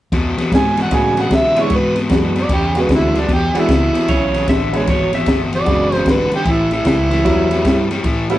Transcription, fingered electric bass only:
0, 0, Header, 1, 3, 480
1, 0, Start_track
1, 0, Tempo, 396040
1, 141, Time_signature, 4, 2, 24, 8
1, 10163, End_track
2, 0, Start_track
2, 0, Title_t, "Fingered electric bass"
2, 0, Program_c, 0, 33
2, 147, Note_on_c, 0, 40, 80
2, 433, Note_off_c, 0, 40, 0
2, 627, Note_on_c, 0, 44, 85
2, 1089, Note_off_c, 0, 44, 0
2, 1101, Note_on_c, 0, 45, 89
2, 1566, Note_off_c, 0, 45, 0
2, 1582, Note_on_c, 0, 47, 82
2, 2046, Note_off_c, 0, 47, 0
2, 2055, Note_on_c, 0, 44, 75
2, 2522, Note_off_c, 0, 44, 0
2, 2538, Note_on_c, 0, 42, 89
2, 3003, Note_off_c, 0, 42, 0
2, 3022, Note_on_c, 0, 40, 94
2, 3486, Note_off_c, 0, 40, 0
2, 3503, Note_on_c, 0, 38, 89
2, 3966, Note_off_c, 0, 38, 0
2, 3984, Note_on_c, 0, 40, 76
2, 4270, Note_off_c, 0, 40, 0
2, 4468, Note_on_c, 0, 37, 86
2, 4752, Note_off_c, 0, 37, 0
2, 4943, Note_on_c, 0, 35, 89
2, 5406, Note_off_c, 0, 35, 0
2, 5428, Note_on_c, 0, 33, 85
2, 5888, Note_off_c, 0, 33, 0
2, 5909, Note_on_c, 0, 32, 83
2, 6368, Note_off_c, 0, 32, 0
2, 6387, Note_on_c, 0, 31, 86
2, 6847, Note_off_c, 0, 31, 0
2, 6858, Note_on_c, 0, 30, 79
2, 7323, Note_off_c, 0, 30, 0
2, 7349, Note_on_c, 0, 32, 87
2, 7633, Note_off_c, 0, 32, 0
2, 7822, Note_on_c, 0, 33, 80
2, 8285, Note_off_c, 0, 33, 0
2, 8298, Note_on_c, 0, 37, 85
2, 8763, Note_off_c, 0, 37, 0
2, 8784, Note_on_c, 0, 40, 81
2, 9246, Note_off_c, 0, 40, 0
2, 9270, Note_on_c, 0, 43, 88
2, 9729, Note_off_c, 0, 43, 0
2, 9743, Note_on_c, 0, 45, 85
2, 10163, Note_off_c, 0, 45, 0
2, 10163, End_track
3, 0, Start_track
3, 0, Title_t, "Muted fingered electric bass strokes"
3, 454, Note_on_c, 9, 29, 38
3, 575, Note_off_c, 9, 29, 0
3, 4298, Note_on_c, 9, 29, 40
3, 4419, Note_off_c, 9, 29, 0
3, 10163, End_track
0, 0, End_of_file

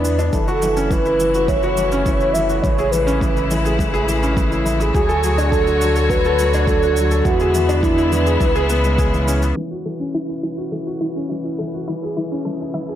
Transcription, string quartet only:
0, 0, Header, 1, 2, 480
1, 0, Start_track
1, 0, Key_signature, 3, "minor"
1, 0, Tempo, 576923
1, 279, Time_signature, 4, 2, 24, 8
1, 10778, End_track
2, 0, Start_track
2, 0, Title_t, "String quartet"
2, 0, Program_c, 0, 48
2, 0, Note_on_c, 0, 50, 70
2, 0, Note_on_c, 0, 56, 64
2, 0, Note_on_c, 0, 59, 65
2, 0, Note_on_c, 0, 64, 75
2, 248, Note_off_c, 0, 50, 0
2, 257, Note_off_c, 0, 64, 0
2, 258, Note_off_c, 0, 56, 0
2, 260, Note_off_c, 0, 59, 0
2, 269, Note_on_c, 0, 49, 74
2, 271, Note_on_c, 0, 54, 64
2, 273, Note_on_c, 0, 57, 64
2, 273, Note_on_c, 0, 64, 77
2, 2176, Note_off_c, 0, 54, 0
2, 2176, Note_off_c, 0, 64, 0
2, 2199, Note_on_c, 0, 56, 64
2, 2200, Note_on_c, 0, 64, 85
2, 4081, Note_off_c, 0, 49, 0
2, 4100, Note_off_c, 0, 56, 0
2, 4100, Note_off_c, 0, 64, 0
2, 4115, Note_on_c, 0, 73, 72
2, 4116, Note_on_c, 0, 66, 83
2, 4117, Note_on_c, 0, 50, 73
2, 6002, Note_off_c, 0, 57, 0
2, 6018, Note_off_c, 0, 50, 0
2, 6018, Note_off_c, 0, 66, 0
2, 6018, Note_off_c, 0, 73, 0
2, 6032, Note_on_c, 0, 64, 85
2, 6033, Note_on_c, 0, 59, 66
2, 6035, Note_on_c, 0, 56, 67
2, 6036, Note_on_c, 0, 50, 69
2, 6988, Note_off_c, 0, 50, 0
2, 6995, Note_on_c, 0, 49, 78
2, 7936, Note_off_c, 0, 64, 0
2, 7937, Note_off_c, 0, 56, 0
2, 7937, Note_off_c, 0, 59, 0
2, 7947, Note_off_c, 0, 49, 0
2, 7960, Note_on_c, 0, 61, 56
2, 7962, Note_on_c, 0, 52, 66
2, 7964, Note_on_c, 0, 57, 57
2, 7965, Note_on_c, 0, 66, 71
2, 9863, Note_off_c, 0, 66, 0
2, 9880, Note_on_c, 0, 68, 70
2, 10778, Note_off_c, 0, 52, 0
2, 10778, Note_off_c, 0, 57, 0
2, 10778, Note_off_c, 0, 61, 0
2, 10778, Note_off_c, 0, 68, 0
2, 10778, End_track
0, 0, End_of_file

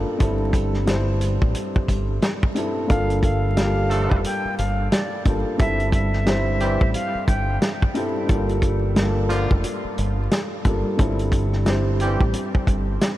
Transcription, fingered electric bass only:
0, 0, Header, 1, 3, 480
1, 0, Start_track
1, 0, Tempo, 674157
1, 143, Time_signature, 4, 2, 24, 8
1, 9381, End_track
2, 0, Start_track
2, 0, Title_t, "Fingered electric bass"
2, 0, Program_c, 0, 33
2, 148, Note_on_c, 0, 31, 109
2, 978, Note_off_c, 0, 31, 0
2, 1012, Note_on_c, 0, 33, 84
2, 1094, Note_off_c, 0, 33, 0
2, 1344, Note_on_c, 0, 31, 90
2, 1550, Note_off_c, 0, 31, 0
2, 2067, Note_on_c, 0, 31, 117
2, 2897, Note_off_c, 0, 31, 0
2, 2932, Note_on_c, 0, 29, 89
2, 3014, Note_off_c, 0, 29, 0
2, 3269, Note_on_c, 0, 31, 95
2, 3473, Note_off_c, 0, 31, 0
2, 3745, Note_on_c, 0, 31, 89
2, 3866, Note_off_c, 0, 31, 0
2, 3987, Note_on_c, 0, 31, 113
2, 4817, Note_off_c, 0, 31, 0
2, 4852, Note_on_c, 0, 33, 89
2, 4934, Note_off_c, 0, 33, 0
2, 5184, Note_on_c, 0, 31, 98
2, 5390, Note_off_c, 0, 31, 0
2, 5907, Note_on_c, 0, 31, 112
2, 6737, Note_off_c, 0, 31, 0
2, 6772, Note_on_c, 0, 29, 92
2, 6854, Note_off_c, 0, 29, 0
2, 7109, Note_on_c, 0, 31, 93
2, 7314, Note_off_c, 0, 31, 0
2, 7586, Note_on_c, 0, 31, 86
2, 7706, Note_off_c, 0, 31, 0
2, 7828, Note_on_c, 0, 31, 113
2, 8658, Note_off_c, 0, 31, 0
2, 8693, Note_on_c, 0, 33, 82
2, 8774, Note_off_c, 0, 33, 0
2, 9025, Note_on_c, 0, 31, 94
2, 9231, Note_off_c, 0, 31, 0
2, 9381, End_track
3, 0, Start_track
3, 0, Title_t, "Muted fingered electric bass strokes"
3, 1254, Note_on_c, 9, 29, 47
3, 1326, Note_off_c, 9, 29, 0
3, 3169, Note_on_c, 9, 29, 49
3, 3240, Note_off_c, 9, 29, 0
3, 5090, Note_on_c, 9, 29, 51
3, 5161, Note_off_c, 9, 29, 0
3, 7010, Note_on_c, 9, 29, 50
3, 7082, Note_off_c, 9, 29, 0
3, 8935, Note_on_c, 9, 29, 49
3, 9007, Note_off_c, 9, 29, 0
3, 9381, End_track
0, 0, End_of_file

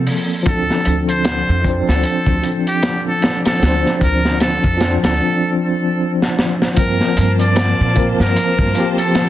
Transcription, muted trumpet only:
0, 0, Header, 1, 2, 480
1, 0, Start_track
1, 0, Key_signature, -1, "minor"
1, 0, Tempo, 789474
1, 280, Time_signature, 4, 2, 24, 8
1, 5649, End_track
2, 0, Start_track
2, 0, Title_t, "Muted trumpet"
2, 0, Program_c, 0, 59
2, 290, Note_on_c, 0, 69, 101
2, 623, Note_off_c, 0, 69, 0
2, 665, Note_on_c, 0, 72, 100
2, 1087, Note_off_c, 0, 72, 0
2, 1147, Note_on_c, 0, 69, 100
2, 1567, Note_off_c, 0, 69, 0
2, 1627, Note_on_c, 0, 67, 86
2, 1836, Note_off_c, 0, 67, 0
2, 1871, Note_on_c, 0, 69, 86
2, 2078, Note_off_c, 0, 69, 0
2, 2108, Note_on_c, 0, 69, 97
2, 2414, Note_off_c, 0, 69, 0
2, 2450, Note_on_c, 0, 70, 87
2, 2665, Note_off_c, 0, 70, 0
2, 2685, Note_on_c, 0, 69, 96
2, 3021, Note_off_c, 0, 69, 0
2, 3067, Note_on_c, 0, 69, 94
2, 3373, Note_off_c, 0, 69, 0
2, 4126, Note_on_c, 0, 70, 103
2, 4461, Note_off_c, 0, 70, 0
2, 4501, Note_on_c, 0, 74, 98
2, 4925, Note_off_c, 0, 74, 0
2, 4989, Note_on_c, 0, 70, 99
2, 5409, Note_off_c, 0, 70, 0
2, 5461, Note_on_c, 0, 69, 90
2, 5649, Note_off_c, 0, 69, 0
2, 5649, End_track
0, 0, End_of_file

